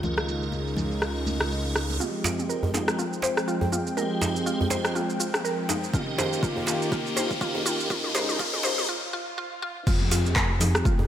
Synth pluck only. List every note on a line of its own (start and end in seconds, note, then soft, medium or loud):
2.00 2.13 F4 medium
2.25 2.37 F4 medium
2.49 2.62 A#4 medium
2.74 2.87 D#4 medium
2.99 3.06 F4 medium
3.23 3.36 C5 loud
3.48 3.60 F4 medium
3.72 3.85 F4 medium
3.97 4.10 A#4 medium
4.21 4.35 D#4 medium
4.46 4.54 F4 medium
4.71 4.83 C5 loud
4.95 5.08 F4 medium
5.20 5.33 F4 medium
5.44 5.57 A#4 medium
5.69 5.83 D#4 medium
5.94 6.01 F4 medium
6.18 6.31 C5 medium
6.43 6.55 F4 medium
6.67 6.80 F4 medium
6.92 7.00 F4 medium
7.17 7.29 C5 loud
7.41 7.54 F4 medium
7.66 7.78 F4 medium
7.90 7.98 F4 medium
8.15 8.28 C5 loud
8.39 8.47 F4 medium
8.64 8.77 C5 medium
8.89 8.96 F4 medium
9.13 9.21 F4 medium
9.38 9.46 F4 medium
9.62 9.70 F4 medium
9.87 10.00 F4 medium
10.11 10.24 F4 medium
10.36 10.49 A#4 medium
10.61 10.74 D#4 medium
10.85 10.93 F4 medium